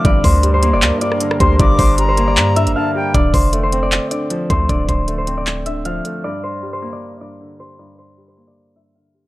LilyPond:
<<
  \new Staff \with { instrumentName = "Flute" } { \time 4/4 \key d \minor \tempo 4 = 155 r2. r8 c'''8 | d'''4 bes''2 a''8 g''8 | r1 | r1 |
r1 | r1 | }
  \new Staff \with { instrumentName = "Harp" } { \time 4/4 \key d \minor d''8 c''8. c''8 d''8. d''4 c''8 | d''8 c''8. c''8 d''8. e''8 f''4 | d''8 c''8. c''8 d''8. d''4 c''8 | d''8 c''8. c''8 d''8. e''8 f''4 |
d''8 c''8. c''8 d''8. d''4 c''8 | d''8 c''8. c''8 d''8. e''8 f''4 | }
  \new Staff \with { instrumentName = "Analog synth pad" } { \time 4/4 \key d \minor <g d' bes'>1~ | <g d' bes'>1 | r1 | r1 |
r1 | r1 | }
  \new Staff \with { instrumentName = "Grand piano" } { \clef bass \time 4/4 \key d \minor g,4 g8 bes4 g,8 d8 g8 | g,4 g8 bes4 g,8 d8 g8 | d4 a8 c'4 d8 f8 a8 | d4 a8 c'4 d8 f8 a8 |
g,4 g8 bes4 g,8 d8 g8 | g,4 g8 bes4 g,8 d8 g8 | }
  \new Staff \with { instrumentName = "808-style bass" } { \clef bass \time 4/4 \key d \minor g,,8 d,4~ d,16 f,,16 d,16 r4 r16 d,8 | g,,8 g,,4. g,8. g,,16 r4 | d,,8 f,,4.~ f,,16 r4 r16 d,8 | d,,8 d,,2. r8 |
r1 | r1 | }
  \new DrumStaff \with { instrumentName = "Drums" } \drummode { \time 4/4 <hh bd>8 <hho bd>8 hh8 hh8 <hc hh>8 hh16 ss16 hh16 ss16 <hh bd>8 | <hh bd>8 <hho bd>8 hh8 hh8 <hc hh>8 hh16 hh16 r4 | <hh bd>8 <hho bd>8 hh8 hh8 <hc hh>8 hh8 hh8 <hh bd>8 | <hh bd>8 <hh bd>8 hh8 hh8 <hc hh>8 hh8 hh8 hh8 |
r4 r4 r4 r4 | r4 r4 r4 r4 | }
>>